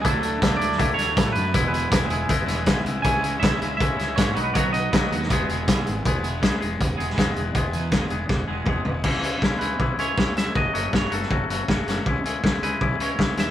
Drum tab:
CC |----------------|----------------|----------------|----------------|
HH |x-x-x-x-x-x-x-x-|x-x-x-x-x-x-x-x-|x-x-x-x-x-x-x-x-|x-x-x-x-x-x-x-x-|
SD |----o--o--o-o---|----o-----o-o---|----o-----o-o---|----o--o----o---|
T2 |----------------|----------------|----------------|----------------|
FT |----------------|----------------|----------------|----------------|
BD |o---o---o---o---|o---o---o---o---|o---o---o---o---|o---o---o---o---|

CC |----------------|----------------|x---------------|----------------|
HH |x-x-x-x-x-x-x-x-|x-x-x-x---------|--x---x---x---x-|--x---x---x---x-|
SD |----o------oo---|----o---o-------|----o-------o-o-|----o--o----o-o-|
T2 |----------------|------------o---|----------------|----------------|
FT |----------------|--------------o-|----------------|----------------|
BD |o---o---o---o---|o---o---o---o---|o---o---o---o---|o---o---o---o---|

CC |----------------|
HH |--x---x---x---x-|
SD |----o-------o-o-|
T2 |----------------|
FT |----------------|
BD |o---o---o---o---|